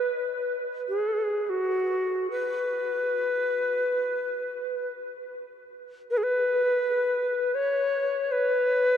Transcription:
0.00 0.63 B4 medium
0.89 1.47 G#4 medium
1.47 2.30 F#4 medium
1.47 1.51 G#4 soft
2.31 4.87 B4 medium
6.11 6.19 B4 medium
6.17 6.25 G#4 medium
6.23 7.56 B4 medium
7.55 8.33 C#5 medium
8.32 8.97 B4 medium

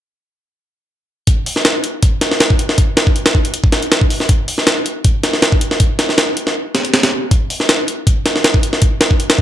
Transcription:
1.27 kick loud
1.27 closed hi-hat medium
1.46 open hi-hat medium
1.56 snare soft
1.65 snare loud
1.65 closed hi-hat medium
1.84 closed hi-hat medium
2.03 kick loud
2.03 closed hi-hat medium
2.21 snare soft
2.21 closed hi-hat medium
2.31 snare soft
2.40 snare loud
2.40 closed hi-hat medium
2.50 kick medium
2.59 closed hi-hat medium
2.69 snare soft
2.78 kick medium
2.78 closed hi-hat medium
2.97 snare loud
2.97 closed hi-hat medium
3.07 kick medium
3.16 closed hi-hat medium
3.26 snare medium
3.26 closed hi-hat medium
3.35 kick medium
3.45 closed hi-hat medium
3.54 closed hi-hat medium
3.64 kick medium
3.72 snare medium
3.72 closed hi-hat medium
3.82 closed hi-hat soft
3.92 snare loud
3.92 closed hi-hat medium
4.01 kick medium
4.10 open hi-hat medium
4.20 snare soft
4.29 kick loud
4.29 closed hi-hat medium
4.48 open hi-hat medium
4.58 snare soft
4.67 snare loud
4.67 closed hi-hat medium
4.86 closed hi-hat medium
5.04 kick loud
5.04 closed hi-hat medium
5.24 snare soft
5.24 closed hi-hat medium
5.33 snare soft
5.42 snare loud
5.42 closed hi-hat medium
5.52 kick medium
5.61 closed hi-hat medium
5.71 snare soft
5.80 kick loud
5.80 closed hi-hat medium
5.99 snare medium
5.99 closed hi-hat medium
6.09 snare soft
6.18 snare loud
6.18 closed hi-hat medium
6.37 closed hi-hat medium
6.47 snare soft
6.75 snare medium
6.75 closed hi-hat medium
6.85 closed hi-hat soft
6.94 snare loud
6.94 closed hi-hat medium
7.03 snare loud
7.03 closed hi-hat medium
7.31 kick loud
7.31 closed hi-hat medium
7.50 open hi-hat medium
7.60 snare soft
7.69 snare loud
7.69 closed hi-hat medium
7.88 closed hi-hat medium
8.07 kick loud
8.07 closed hi-hat medium
8.26 snare medium
8.26 closed hi-hat medium
8.36 snare soft
8.44 snare loud
8.44 closed hi-hat medium
8.54 kick medium
8.63 closed hi-hat medium
8.73 snare soft
8.82 kick loud
8.82 closed hi-hat medium
9.01 snare loud
9.01 closed hi-hat medium
9.11 kick medium
9.20 closed hi-hat medium
9.30 snare loud
9.30 closed hi-hat medium
9.39 kick medium

